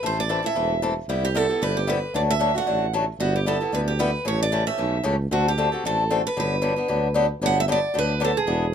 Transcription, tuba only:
0.03 0.45 A1 medium
0.55 0.98 E1 medium
1.08 1.51 C2 medium
1.61 2.04 G1 medium
2.14 2.57 D2 medium
2.67 3.09 A1 medium
3.19 3.62 G1 medium
3.73 4.15 D2 medium
4.25 4.68 A1 medium
4.78 5.01 B1 medium
5.05 5.27 C#2 medium
5.31 5.73 D2 medium
5.84 6.26 A1 medium
6.37 6.79 G1 medium
6.89 7.31 D2 medium
7.41 7.83 G1 medium
7.94 8.36 D2 medium
8.46 8.75 E1 medium

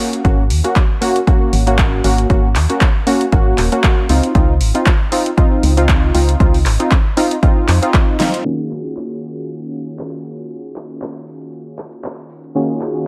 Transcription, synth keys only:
0.00 0.22 A#3 medium
0.00 0.22 C#4 medium
0.00 0.22 F#4 medium
0.24 0.43 A#3 medium
0.24 0.43 C#4 medium
0.24 0.43 F#4 medium
0.64 0.81 A#3 medium
0.64 0.81 C#4 medium
0.64 0.81 F#4 medium
1.01 1.20 A#3 medium
1.01 1.20 C#4 medium
1.01 1.20 F#4 medium
1.27 1.63 A#3 medium
1.27 1.64 C#4 medium
1.27 1.64 F#4 medium
1.67 2.01 A#3 medium
1.67 2.02 C#4 medium
1.67 2.02 F#4 medium
2.04 2.27 A#3 medium
2.04 2.27 C#4 medium
2.04 2.27 F#4 medium
2.30 2.48 A#3 medium
2.30 2.48 C#4 medium
2.30 2.48 F#4 medium
2.69 2.86 A#3 medium
2.69 2.86 C#4 medium
2.69 2.87 F#4 medium
3.07 3.25 A#3 medium
3.07 3.25 C#4 medium
3.07 3.25 F#4 loud
3.32 3.69 A#3 medium
3.32 3.69 C#4 medium
3.32 3.69 F#4 medium
3.72 4.06 A#3 medium
3.72 4.07 C#4 medium
3.72 4.07 F#4 medium
4.09 4.32 C4 medium
4.09 4.32 D#4 medium
4.09 4.32 F4 medium
4.35 4.53 C4 medium
4.35 4.53 D#4 medium
4.35 4.54 F4 medium
4.74 4.91 C4 medium
4.74 4.92 D#4 medium
4.74 4.92 F4 medium
5.12 5.30 C4 medium
5.12 5.30 D#4 medium
5.12 5.30 F4 medium
5.37 5.74 C4 medium
5.37 5.74 D#4 medium
5.37 5.74 F4 medium
5.77 6.12 C4 medium
5.77 6.12 D#4 medium
5.77 6.12 F4 loud
6.14 6.37 C4 medium
6.14 6.37 D#4 medium
6.14 6.38 F4 medium
6.40 6.58 C4 medium
6.40 6.59 D#4 medium
6.40 6.59 F4 medium
6.79 6.96 C4 medium
6.79 6.97 D#4 medium
6.79 6.97 F4 medium
7.17 7.35 C4 medium
7.17 7.35 D#4 medium
7.17 7.36 F4 loud
7.42 7.79 C4 medium
7.42 7.79 D#4 medium
7.42 7.79 F4 medium
7.82 8.17 C4 medium
7.82 8.17 D#4 medium
7.82 8.17 F4 medium
8.19 8.42 C4 medium
8.19 8.43 D#4 medium
8.19 8.43 F4 medium
8.45 12.52 D#3 medium
8.45 12.53 A#3 medium
8.45 12.53 C#4 medium
8.45 12.53 F4 medium
8.45 12.53 F#4 medium
8.45 12.53 G#4 medium
12.55 13.07 D#3 medium
12.55 13.07 A#3 medium
12.55 13.07 C#4 medium
12.55 13.07 F4 medium
12.55 13.07 F#4 medium
12.55 13.07 G#4 medium

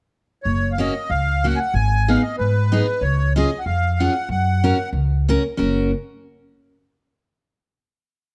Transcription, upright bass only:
0.45 0.87 F#1 medium
1.10 1.52 C#2 medium
1.74 2.15 G#1 medium
2.39 2.80 G#2 medium
3.01 3.42 C#2 medium
3.66 4.07 F2 medium
4.29 4.70 F#2 medium
4.93 5.35 C#2 medium
5.59 5.91 F#1 medium

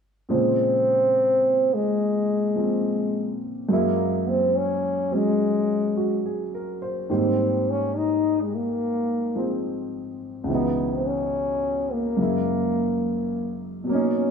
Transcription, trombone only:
0.33 1.75 C4 medium
1.74 3.43 G#3 medium
3.73 4.30 A#3 medium
4.29 4.58 C4 medium
4.57 5.15 C#4 medium
5.14 6.25 G#3 medium
7.13 7.72 C4 medium
7.71 7.98 C#4 medium
7.97 8.44 D#4 medium
8.42 8.56 G#3 medium
8.55 9.65 A#3 medium
10.51 10.97 B3 medium
10.95 11.08 C4 medium
11.06 11.94 C#4 medium
11.92 13.61 A#3 medium
13.90 14.31 C#4 medium

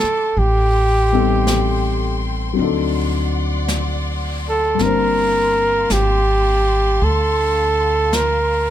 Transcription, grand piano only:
0.00 0.35 F3 soft
0.00 0.36 A#3 soft
0.00 0.37 C4 soft
0.00 0.37 D4 soft
0.00 0.38 C5 soft
1.13 2.58 G3 soft
1.13 2.58 B3 soft
1.13 2.55 C4 soft
1.13 2.58 D#4 soft
1.13 2.59 A4 soft
2.53 4.77 F#3 soft
2.53 4.78 C4 soft
2.59 4.80 D4 soft
2.59 4.81 D#4 soft
2.64 4.82 A4 soft
4.75 8.70 G3 soft
4.75 8.70 A#3 soft
4.81 8.70 C4 soft
4.81 8.70 D4 soft
4.85 8.70 C5 soft

